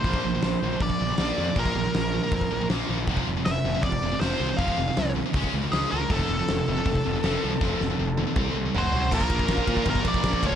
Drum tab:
CC |----------------|----------------|----------------|----------------|
RD |----------------|----------------|----------------|----------------|
HH |o---o---o---o---|o---o---o---o---|o---o---o---o---|o---o---o---o---|
SD |----o-------o---|----o-------o---|----o-------o---|----o-------o---|
T1 |----------------|----------------|----------------|----------------|
T2 |----------------|----------------|----------------|----------------|
FT |----------------|----------------|----------------|----------------|
BD |oo------oo------|oo------oo------|oo------oo------|oo------oo------|

CC |----------------|----------------|x---------------|
RD |----------------|----------------|--x-x-x-x-x-x-x-|
HH |o---o---o---o---|----------------|----------------|
SD |----o-------o---|o-o-------------|----o-------o---|
T1 |----------------|------o---------|----------------|
T2 |----------------|--------o-------|----------------|
FT |----------------|------------o-o-|----------------|
BD |oo------oo------|o-------o-------|oooooooooooooooo|